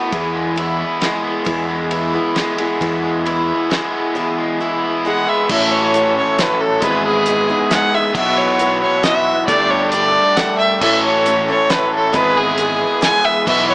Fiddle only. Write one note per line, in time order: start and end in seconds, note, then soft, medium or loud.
5.06 5.30 F#5 medium
5.29 5.50 E5 medium
5.50 5.74 E5 medium
5.72 6.16 C#5 medium
6.17 6.42 C#5 medium
6.41 6.62 B4 medium
6.61 6.85 A4 medium
6.84 7.05 B4 medium
7.06 7.68 G#4 medium
7.72 7.96 F#5 medium
7.95 8.16 E5 medium
8.17 8.39 E5 loud
8.38 8.81 C#5 medium
8.82 9.05 C#5 medium
9.03 9.16 D#5 medium
9.15 9.47 E5 medium
9.47 9.72 D5 medium
9.71 9.92 C#5 medium
9.92 10.38 D5 medium
10.36 10.58 F#5 medium
10.58 10.79 E5 medium
10.81 11.01 E5 loud
11.05 11.45 C#5 medium
11.51 11.72 C#5 medium
11.70 11.92 B4 medium
11.95 12.17 A4 medium
12.16 12.39 B4 loud
12.38 13.03 G#4 medium
13.03 13.26 G#5 loud
13.25 13.47 E5 loud
13.47 13.68 E5 loud
13.70 13.74 C#5 medium